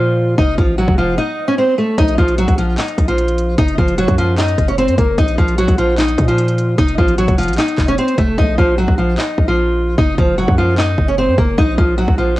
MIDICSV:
0, 0, Header, 1, 4, 480
1, 0, Start_track
1, 0, Key_signature, -5, "minor"
1, 0, Tempo, 400000
1, 457, Time_signature, 4, 2, 24, 8
1, 14875, End_track
2, 0, Start_track
2, 0, Title_t, "Steel-string acoustic guitar"
2, 0, Program_c, 0, 25
2, 0, Note_on_c, 0, 53, 65
2, 0, Note_on_c, 0, 65, 81
2, 421, Note_off_c, 0, 65, 0
2, 426, Note_off_c, 0, 53, 0
2, 456, Note_on_c, 0, 63, 101
2, 465, Note_on_c, 0, 75, 77
2, 666, Note_off_c, 0, 63, 0
2, 672, Note_off_c, 0, 75, 0
2, 696, Note_on_c, 0, 65, 79
2, 707, Note_on_c, 0, 53, 59
2, 907, Note_off_c, 0, 65, 0
2, 912, Note_off_c, 0, 53, 0
2, 937, Note_on_c, 0, 66, 83
2, 946, Note_on_c, 0, 54, 71
2, 1147, Note_off_c, 0, 66, 0
2, 1152, Note_off_c, 0, 54, 0
2, 1176, Note_on_c, 0, 65, 77
2, 1185, Note_on_c, 0, 53, 59
2, 1386, Note_off_c, 0, 65, 0
2, 1392, Note_off_c, 0, 53, 0
2, 1415, Note_on_c, 0, 63, 94
2, 1424, Note_on_c, 0, 75, 66
2, 1754, Note_off_c, 0, 63, 0
2, 1759, Note_off_c, 0, 75, 0
2, 1774, Note_on_c, 0, 61, 88
2, 1784, Note_on_c, 0, 73, 59
2, 1881, Note_off_c, 0, 61, 0
2, 1886, Note_off_c, 0, 73, 0
2, 1896, Note_on_c, 0, 60, 83
2, 1907, Note_on_c, 0, 72, 67
2, 2107, Note_off_c, 0, 60, 0
2, 2113, Note_off_c, 0, 72, 0
2, 2135, Note_on_c, 0, 57, 84
2, 2145, Note_on_c, 0, 69, 65
2, 2346, Note_off_c, 0, 57, 0
2, 2352, Note_off_c, 0, 69, 0
2, 2376, Note_on_c, 0, 63, 98
2, 2387, Note_on_c, 0, 75, 75
2, 2587, Note_off_c, 0, 63, 0
2, 2593, Note_off_c, 0, 75, 0
2, 2616, Note_on_c, 0, 65, 88
2, 2626, Note_on_c, 0, 53, 69
2, 2826, Note_off_c, 0, 65, 0
2, 2832, Note_off_c, 0, 53, 0
2, 2857, Note_on_c, 0, 66, 93
2, 2866, Note_on_c, 0, 54, 66
2, 3067, Note_off_c, 0, 66, 0
2, 3072, Note_off_c, 0, 54, 0
2, 3095, Note_on_c, 0, 65, 74
2, 3105, Note_on_c, 0, 53, 55
2, 3306, Note_off_c, 0, 65, 0
2, 3312, Note_off_c, 0, 53, 0
2, 3337, Note_on_c, 0, 63, 75
2, 3347, Note_on_c, 0, 75, 59
2, 3676, Note_off_c, 0, 63, 0
2, 3681, Note_off_c, 0, 75, 0
2, 3697, Note_on_c, 0, 65, 80
2, 3707, Note_on_c, 0, 53, 56
2, 4261, Note_off_c, 0, 65, 0
2, 4266, Note_off_c, 0, 53, 0
2, 4296, Note_on_c, 0, 63, 99
2, 4305, Note_on_c, 0, 75, 75
2, 4507, Note_off_c, 0, 63, 0
2, 4512, Note_off_c, 0, 75, 0
2, 4537, Note_on_c, 0, 65, 82
2, 4546, Note_on_c, 0, 53, 62
2, 4747, Note_off_c, 0, 65, 0
2, 4752, Note_off_c, 0, 53, 0
2, 4776, Note_on_c, 0, 66, 86
2, 4785, Note_on_c, 0, 54, 68
2, 4986, Note_off_c, 0, 66, 0
2, 4992, Note_off_c, 0, 54, 0
2, 5018, Note_on_c, 0, 65, 80
2, 5027, Note_on_c, 0, 53, 59
2, 5228, Note_off_c, 0, 65, 0
2, 5233, Note_off_c, 0, 53, 0
2, 5258, Note_on_c, 0, 63, 88
2, 5267, Note_on_c, 0, 75, 67
2, 5596, Note_off_c, 0, 63, 0
2, 5601, Note_off_c, 0, 75, 0
2, 5619, Note_on_c, 0, 61, 80
2, 5628, Note_on_c, 0, 73, 60
2, 5723, Note_off_c, 0, 61, 0
2, 5728, Note_off_c, 0, 73, 0
2, 5738, Note_on_c, 0, 60, 85
2, 5748, Note_on_c, 0, 72, 70
2, 5948, Note_off_c, 0, 60, 0
2, 5953, Note_off_c, 0, 72, 0
2, 5976, Note_on_c, 0, 58, 83
2, 5986, Note_on_c, 0, 70, 64
2, 6186, Note_off_c, 0, 58, 0
2, 6192, Note_off_c, 0, 70, 0
2, 6218, Note_on_c, 0, 63, 100
2, 6228, Note_on_c, 0, 75, 76
2, 6428, Note_off_c, 0, 63, 0
2, 6433, Note_off_c, 0, 75, 0
2, 6459, Note_on_c, 0, 65, 87
2, 6468, Note_on_c, 0, 53, 70
2, 6668, Note_off_c, 0, 65, 0
2, 6673, Note_off_c, 0, 53, 0
2, 6698, Note_on_c, 0, 66, 95
2, 6708, Note_on_c, 0, 54, 64
2, 6908, Note_off_c, 0, 66, 0
2, 6913, Note_off_c, 0, 54, 0
2, 6937, Note_on_c, 0, 65, 73
2, 6947, Note_on_c, 0, 53, 55
2, 7147, Note_off_c, 0, 65, 0
2, 7153, Note_off_c, 0, 53, 0
2, 7176, Note_on_c, 0, 63, 88
2, 7186, Note_on_c, 0, 75, 67
2, 7515, Note_off_c, 0, 63, 0
2, 7520, Note_off_c, 0, 75, 0
2, 7536, Note_on_c, 0, 65, 80
2, 7546, Note_on_c, 0, 53, 64
2, 8100, Note_off_c, 0, 65, 0
2, 8106, Note_off_c, 0, 53, 0
2, 8137, Note_on_c, 0, 63, 100
2, 8146, Note_on_c, 0, 75, 77
2, 8347, Note_off_c, 0, 63, 0
2, 8352, Note_off_c, 0, 75, 0
2, 8375, Note_on_c, 0, 65, 78
2, 8386, Note_on_c, 0, 53, 63
2, 8586, Note_off_c, 0, 65, 0
2, 8592, Note_off_c, 0, 53, 0
2, 8617, Note_on_c, 0, 66, 81
2, 8627, Note_on_c, 0, 54, 72
2, 8827, Note_off_c, 0, 66, 0
2, 8833, Note_off_c, 0, 54, 0
2, 8857, Note_on_c, 0, 65, 77
2, 8867, Note_on_c, 0, 53, 61
2, 9067, Note_off_c, 0, 65, 0
2, 9072, Note_off_c, 0, 53, 0
2, 9096, Note_on_c, 0, 63, 96
2, 9106, Note_on_c, 0, 75, 65
2, 9435, Note_off_c, 0, 63, 0
2, 9440, Note_off_c, 0, 75, 0
2, 9457, Note_on_c, 0, 61, 87
2, 9466, Note_on_c, 0, 73, 58
2, 9562, Note_off_c, 0, 61, 0
2, 9567, Note_off_c, 0, 73, 0
2, 9578, Note_on_c, 0, 60, 84
2, 9588, Note_on_c, 0, 72, 68
2, 9788, Note_off_c, 0, 60, 0
2, 9793, Note_off_c, 0, 72, 0
2, 9815, Note_on_c, 0, 57, 85
2, 9825, Note_on_c, 0, 69, 66
2, 10026, Note_off_c, 0, 57, 0
2, 10031, Note_off_c, 0, 69, 0
2, 10057, Note_on_c, 0, 63, 100
2, 10066, Note_on_c, 0, 75, 76
2, 10267, Note_off_c, 0, 63, 0
2, 10272, Note_off_c, 0, 75, 0
2, 10297, Note_on_c, 0, 65, 84
2, 10306, Note_on_c, 0, 53, 68
2, 10507, Note_off_c, 0, 65, 0
2, 10512, Note_off_c, 0, 53, 0
2, 10536, Note_on_c, 0, 66, 88
2, 10546, Note_on_c, 0, 54, 65
2, 10747, Note_off_c, 0, 66, 0
2, 10752, Note_off_c, 0, 54, 0
2, 10775, Note_on_c, 0, 65, 71
2, 10784, Note_on_c, 0, 53, 54
2, 10986, Note_off_c, 0, 65, 0
2, 10991, Note_off_c, 0, 53, 0
2, 11015, Note_on_c, 0, 63, 74
2, 11025, Note_on_c, 0, 75, 58
2, 11355, Note_off_c, 0, 63, 0
2, 11360, Note_off_c, 0, 75, 0
2, 11375, Note_on_c, 0, 65, 77
2, 11385, Note_on_c, 0, 53, 55
2, 11940, Note_off_c, 0, 65, 0
2, 11946, Note_off_c, 0, 53, 0
2, 11975, Note_on_c, 0, 63, 100
2, 11985, Note_on_c, 0, 75, 75
2, 12186, Note_off_c, 0, 63, 0
2, 12192, Note_off_c, 0, 75, 0
2, 12216, Note_on_c, 0, 65, 80
2, 12226, Note_on_c, 0, 53, 64
2, 12427, Note_off_c, 0, 65, 0
2, 12432, Note_off_c, 0, 53, 0
2, 12456, Note_on_c, 0, 66, 90
2, 12465, Note_on_c, 0, 54, 67
2, 12666, Note_off_c, 0, 66, 0
2, 12672, Note_off_c, 0, 54, 0
2, 12697, Note_on_c, 0, 65, 81
2, 12706, Note_on_c, 0, 53, 61
2, 12907, Note_off_c, 0, 65, 0
2, 12912, Note_off_c, 0, 53, 0
2, 12938, Note_on_c, 0, 63, 91
2, 12947, Note_on_c, 0, 75, 67
2, 13276, Note_off_c, 0, 63, 0
2, 13281, Note_off_c, 0, 75, 0
2, 13297, Note_on_c, 0, 61, 78
2, 13306, Note_on_c, 0, 73, 61
2, 13402, Note_off_c, 0, 61, 0
2, 13407, Note_off_c, 0, 73, 0
2, 13416, Note_on_c, 0, 60, 83
2, 13425, Note_on_c, 0, 72, 69
2, 13626, Note_off_c, 0, 60, 0
2, 13632, Note_off_c, 0, 72, 0
2, 13655, Note_on_c, 0, 58, 83
2, 13664, Note_on_c, 0, 70, 62
2, 13866, Note_off_c, 0, 58, 0
2, 13871, Note_off_c, 0, 70, 0
2, 13895, Note_on_c, 0, 63, 100
2, 13905, Note_on_c, 0, 75, 73
2, 14106, Note_off_c, 0, 63, 0
2, 14112, Note_off_c, 0, 75, 0
2, 14135, Note_on_c, 0, 65, 87
2, 14146, Note_on_c, 0, 53, 67
2, 14346, Note_off_c, 0, 65, 0
2, 14352, Note_off_c, 0, 53, 0
2, 14374, Note_on_c, 0, 66, 95
2, 14384, Note_on_c, 0, 54, 64
2, 14586, Note_off_c, 0, 66, 0
2, 14591, Note_off_c, 0, 54, 0
2, 14616, Note_on_c, 0, 65, 73
2, 14626, Note_on_c, 0, 53, 54
2, 14827, Note_off_c, 0, 65, 0
2, 14832, Note_off_c, 0, 53, 0
2, 14875, End_track
3, 0, Start_track
3, 0, Title_t, "808-style bass"
3, 0, Program_c, 1, 38
3, 0, Note_on_c, 1, 46, 106
3, 428, Note_off_c, 1, 46, 0
3, 457, Note_on_c, 1, 29, 111
3, 688, Note_off_c, 1, 29, 0
3, 697, Note_on_c, 1, 33, 108
3, 1043, Note_off_c, 1, 33, 0
3, 1056, Note_on_c, 1, 29, 104
3, 1417, Note_off_c, 1, 29, 0
3, 2377, Note_on_c, 1, 34, 112
3, 2608, Note_off_c, 1, 34, 0
3, 2618, Note_on_c, 1, 34, 107
3, 2963, Note_off_c, 1, 34, 0
3, 2976, Note_on_c, 1, 34, 102
3, 3322, Note_off_c, 1, 34, 0
3, 3576, Note_on_c, 1, 34, 107
3, 4268, Note_off_c, 1, 34, 0
3, 4298, Note_on_c, 1, 30, 108
3, 4528, Note_off_c, 1, 30, 0
3, 4538, Note_on_c, 1, 30, 105
3, 4883, Note_off_c, 1, 30, 0
3, 4897, Note_on_c, 1, 42, 99
3, 5473, Note_off_c, 1, 42, 0
3, 5497, Note_on_c, 1, 30, 106
3, 5857, Note_on_c, 1, 42, 98
3, 5875, Note_off_c, 1, 30, 0
3, 5971, Note_off_c, 1, 42, 0
3, 5977, Note_on_c, 1, 30, 107
3, 6207, Note_off_c, 1, 30, 0
3, 6217, Note_on_c, 1, 34, 110
3, 6448, Note_off_c, 1, 34, 0
3, 6458, Note_on_c, 1, 34, 101
3, 6803, Note_off_c, 1, 34, 0
3, 6817, Note_on_c, 1, 34, 101
3, 7393, Note_off_c, 1, 34, 0
3, 7416, Note_on_c, 1, 46, 103
3, 8108, Note_off_c, 1, 46, 0
3, 8137, Note_on_c, 1, 29, 115
3, 8368, Note_off_c, 1, 29, 0
3, 8377, Note_on_c, 1, 33, 105
3, 8723, Note_off_c, 1, 33, 0
3, 8736, Note_on_c, 1, 29, 105
3, 8977, Note_on_c, 1, 33, 98
3, 8995, Note_off_c, 1, 29, 0
3, 9091, Note_off_c, 1, 33, 0
3, 9336, Note_on_c, 1, 29, 102
3, 9567, Note_off_c, 1, 29, 0
3, 9816, Note_on_c, 1, 29, 105
3, 10047, Note_off_c, 1, 29, 0
3, 10057, Note_on_c, 1, 34, 116
3, 10287, Note_off_c, 1, 34, 0
3, 10299, Note_on_c, 1, 34, 104
3, 10644, Note_off_c, 1, 34, 0
3, 10657, Note_on_c, 1, 34, 101
3, 11003, Note_off_c, 1, 34, 0
3, 11256, Note_on_c, 1, 34, 104
3, 11948, Note_off_c, 1, 34, 0
3, 11977, Note_on_c, 1, 30, 112
3, 12208, Note_off_c, 1, 30, 0
3, 12218, Note_on_c, 1, 30, 104
3, 12563, Note_off_c, 1, 30, 0
3, 12577, Note_on_c, 1, 42, 103
3, 13153, Note_off_c, 1, 42, 0
3, 13176, Note_on_c, 1, 30, 107
3, 13536, Note_on_c, 1, 42, 102
3, 13554, Note_off_c, 1, 30, 0
3, 13651, Note_off_c, 1, 42, 0
3, 13656, Note_on_c, 1, 30, 106
3, 13887, Note_off_c, 1, 30, 0
3, 13897, Note_on_c, 1, 34, 114
3, 14127, Note_off_c, 1, 34, 0
3, 14137, Note_on_c, 1, 34, 102
3, 14483, Note_off_c, 1, 34, 0
3, 14496, Note_on_c, 1, 34, 101
3, 14875, Note_off_c, 1, 34, 0
3, 14875, End_track
4, 0, Start_track
4, 0, Title_t, "Drums"
4, 457, Note_on_c, 9, 36, 117
4, 577, Note_off_c, 9, 36, 0
4, 698, Note_on_c, 9, 36, 101
4, 818, Note_off_c, 9, 36, 0
4, 1056, Note_on_c, 9, 36, 94
4, 1176, Note_off_c, 9, 36, 0
4, 2377, Note_on_c, 9, 36, 122
4, 2377, Note_on_c, 9, 42, 82
4, 2497, Note_off_c, 9, 36, 0
4, 2497, Note_off_c, 9, 42, 0
4, 2497, Note_on_c, 9, 42, 63
4, 2617, Note_off_c, 9, 42, 0
4, 2618, Note_on_c, 9, 36, 104
4, 2738, Note_off_c, 9, 36, 0
4, 2738, Note_on_c, 9, 42, 53
4, 2858, Note_off_c, 9, 42, 0
4, 2858, Note_on_c, 9, 42, 81
4, 2977, Note_on_c, 9, 36, 98
4, 2978, Note_off_c, 9, 42, 0
4, 2978, Note_on_c, 9, 42, 58
4, 3097, Note_off_c, 9, 36, 0
4, 3097, Note_off_c, 9, 42, 0
4, 3097, Note_on_c, 9, 42, 69
4, 3217, Note_off_c, 9, 42, 0
4, 3335, Note_on_c, 9, 39, 98
4, 3336, Note_on_c, 9, 42, 80
4, 3455, Note_off_c, 9, 39, 0
4, 3456, Note_off_c, 9, 42, 0
4, 3457, Note_on_c, 9, 42, 55
4, 3576, Note_off_c, 9, 42, 0
4, 3576, Note_on_c, 9, 36, 85
4, 3576, Note_on_c, 9, 42, 76
4, 3696, Note_off_c, 9, 36, 0
4, 3696, Note_off_c, 9, 42, 0
4, 3697, Note_on_c, 9, 42, 54
4, 3817, Note_off_c, 9, 42, 0
4, 3817, Note_on_c, 9, 42, 73
4, 3937, Note_off_c, 9, 42, 0
4, 3937, Note_on_c, 9, 42, 58
4, 4057, Note_off_c, 9, 42, 0
4, 4057, Note_on_c, 9, 42, 66
4, 4177, Note_off_c, 9, 42, 0
4, 4297, Note_on_c, 9, 36, 114
4, 4297, Note_on_c, 9, 42, 83
4, 4417, Note_off_c, 9, 36, 0
4, 4417, Note_off_c, 9, 42, 0
4, 4417, Note_on_c, 9, 42, 60
4, 4537, Note_off_c, 9, 42, 0
4, 4538, Note_on_c, 9, 36, 101
4, 4656, Note_on_c, 9, 42, 53
4, 4658, Note_off_c, 9, 36, 0
4, 4776, Note_off_c, 9, 42, 0
4, 4777, Note_on_c, 9, 42, 83
4, 4897, Note_off_c, 9, 42, 0
4, 4897, Note_on_c, 9, 36, 92
4, 4897, Note_on_c, 9, 42, 61
4, 5017, Note_off_c, 9, 36, 0
4, 5017, Note_off_c, 9, 42, 0
4, 5017, Note_on_c, 9, 42, 70
4, 5137, Note_off_c, 9, 42, 0
4, 5256, Note_on_c, 9, 39, 96
4, 5257, Note_on_c, 9, 42, 77
4, 5376, Note_off_c, 9, 39, 0
4, 5377, Note_off_c, 9, 42, 0
4, 5378, Note_on_c, 9, 42, 53
4, 5497, Note_on_c, 9, 36, 85
4, 5498, Note_off_c, 9, 42, 0
4, 5498, Note_on_c, 9, 42, 76
4, 5617, Note_off_c, 9, 36, 0
4, 5618, Note_off_c, 9, 42, 0
4, 5618, Note_on_c, 9, 42, 56
4, 5738, Note_off_c, 9, 42, 0
4, 5738, Note_on_c, 9, 42, 75
4, 5858, Note_off_c, 9, 42, 0
4, 5858, Note_on_c, 9, 42, 59
4, 5977, Note_off_c, 9, 42, 0
4, 5977, Note_on_c, 9, 36, 106
4, 5977, Note_on_c, 9, 42, 68
4, 6097, Note_off_c, 9, 36, 0
4, 6097, Note_off_c, 9, 42, 0
4, 6217, Note_on_c, 9, 36, 116
4, 6217, Note_on_c, 9, 42, 84
4, 6337, Note_off_c, 9, 36, 0
4, 6337, Note_off_c, 9, 42, 0
4, 6337, Note_on_c, 9, 42, 63
4, 6457, Note_off_c, 9, 42, 0
4, 6458, Note_on_c, 9, 36, 105
4, 6578, Note_off_c, 9, 36, 0
4, 6578, Note_on_c, 9, 42, 53
4, 6697, Note_off_c, 9, 42, 0
4, 6697, Note_on_c, 9, 42, 83
4, 6817, Note_off_c, 9, 42, 0
4, 6817, Note_on_c, 9, 36, 93
4, 6818, Note_on_c, 9, 42, 60
4, 6937, Note_off_c, 9, 36, 0
4, 6938, Note_off_c, 9, 42, 0
4, 6938, Note_on_c, 9, 42, 72
4, 7058, Note_off_c, 9, 42, 0
4, 7176, Note_on_c, 9, 39, 96
4, 7177, Note_on_c, 9, 42, 80
4, 7296, Note_off_c, 9, 39, 0
4, 7297, Note_off_c, 9, 42, 0
4, 7297, Note_on_c, 9, 42, 56
4, 7416, Note_on_c, 9, 36, 85
4, 7417, Note_off_c, 9, 42, 0
4, 7417, Note_on_c, 9, 42, 78
4, 7536, Note_off_c, 9, 36, 0
4, 7537, Note_off_c, 9, 42, 0
4, 7537, Note_on_c, 9, 42, 55
4, 7657, Note_off_c, 9, 42, 0
4, 7657, Note_on_c, 9, 42, 71
4, 7776, Note_off_c, 9, 42, 0
4, 7776, Note_on_c, 9, 42, 59
4, 7896, Note_off_c, 9, 42, 0
4, 7897, Note_on_c, 9, 42, 64
4, 8017, Note_off_c, 9, 42, 0
4, 8137, Note_on_c, 9, 36, 115
4, 8137, Note_on_c, 9, 42, 84
4, 8257, Note_off_c, 9, 36, 0
4, 8257, Note_off_c, 9, 42, 0
4, 8257, Note_on_c, 9, 42, 63
4, 8377, Note_off_c, 9, 42, 0
4, 8378, Note_on_c, 9, 36, 102
4, 8496, Note_on_c, 9, 42, 53
4, 8498, Note_off_c, 9, 36, 0
4, 8616, Note_off_c, 9, 42, 0
4, 8616, Note_on_c, 9, 42, 86
4, 8736, Note_off_c, 9, 42, 0
4, 8736, Note_on_c, 9, 36, 96
4, 8736, Note_on_c, 9, 42, 62
4, 8856, Note_off_c, 9, 36, 0
4, 8856, Note_off_c, 9, 42, 0
4, 8856, Note_on_c, 9, 42, 42
4, 8856, Note_on_c, 9, 46, 74
4, 8917, Note_off_c, 9, 42, 0
4, 8917, Note_on_c, 9, 42, 54
4, 8976, Note_off_c, 9, 46, 0
4, 8977, Note_off_c, 9, 42, 0
4, 8977, Note_on_c, 9, 42, 60
4, 9036, Note_off_c, 9, 42, 0
4, 9036, Note_on_c, 9, 42, 71
4, 9095, Note_on_c, 9, 39, 95
4, 9096, Note_off_c, 9, 42, 0
4, 9096, Note_on_c, 9, 42, 80
4, 9215, Note_off_c, 9, 39, 0
4, 9216, Note_off_c, 9, 42, 0
4, 9216, Note_on_c, 9, 42, 55
4, 9336, Note_off_c, 9, 42, 0
4, 9336, Note_on_c, 9, 36, 85
4, 9336, Note_on_c, 9, 39, 92
4, 9336, Note_on_c, 9, 42, 74
4, 9456, Note_off_c, 9, 36, 0
4, 9456, Note_off_c, 9, 39, 0
4, 9456, Note_off_c, 9, 42, 0
4, 9457, Note_on_c, 9, 42, 54
4, 9577, Note_off_c, 9, 42, 0
4, 9577, Note_on_c, 9, 42, 71
4, 9696, Note_off_c, 9, 42, 0
4, 9696, Note_on_c, 9, 42, 61
4, 9816, Note_off_c, 9, 42, 0
4, 9816, Note_on_c, 9, 36, 105
4, 9816, Note_on_c, 9, 42, 65
4, 9936, Note_off_c, 9, 36, 0
4, 9936, Note_off_c, 9, 42, 0
4, 10057, Note_on_c, 9, 36, 117
4, 10177, Note_off_c, 9, 36, 0
4, 10298, Note_on_c, 9, 36, 102
4, 10418, Note_off_c, 9, 36, 0
4, 10657, Note_on_c, 9, 36, 95
4, 10777, Note_off_c, 9, 36, 0
4, 11016, Note_on_c, 9, 39, 98
4, 11136, Note_off_c, 9, 39, 0
4, 11256, Note_on_c, 9, 36, 84
4, 11376, Note_off_c, 9, 36, 0
4, 11977, Note_on_c, 9, 36, 117
4, 12097, Note_off_c, 9, 36, 0
4, 12218, Note_on_c, 9, 36, 108
4, 12338, Note_off_c, 9, 36, 0
4, 12577, Note_on_c, 9, 36, 96
4, 12697, Note_off_c, 9, 36, 0
4, 12936, Note_on_c, 9, 39, 97
4, 13056, Note_off_c, 9, 39, 0
4, 13176, Note_on_c, 9, 36, 84
4, 13296, Note_off_c, 9, 36, 0
4, 13656, Note_on_c, 9, 36, 105
4, 13776, Note_off_c, 9, 36, 0
4, 13897, Note_on_c, 9, 36, 114
4, 14017, Note_off_c, 9, 36, 0
4, 14137, Note_on_c, 9, 36, 105
4, 14257, Note_off_c, 9, 36, 0
4, 14496, Note_on_c, 9, 36, 93
4, 14616, Note_off_c, 9, 36, 0
4, 14875, End_track
0, 0, End_of_file